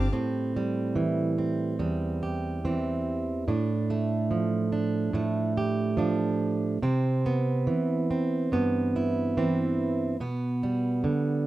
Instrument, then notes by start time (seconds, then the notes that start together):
steel-string acoustic guitar
Already playing: D3 G3
0.13 A2 C4
0.56 G3
0.96 E3
1.38 C4
1.79 E2 G3
2.23 G4
2.65 E3 C4
3.48 A2 D4
3.90 A3
4.31 F3
4.72 D4
5.13 A2 A3
5.57 G4
5.97 F3 D4
6.82 C3 C4
7.26 B3
7.67 E3
8.11 C4
8.52 G2 B3
8.96 E4
9.37 E3 C4
10.20 B2 B3
10.63 G3
11.04 D3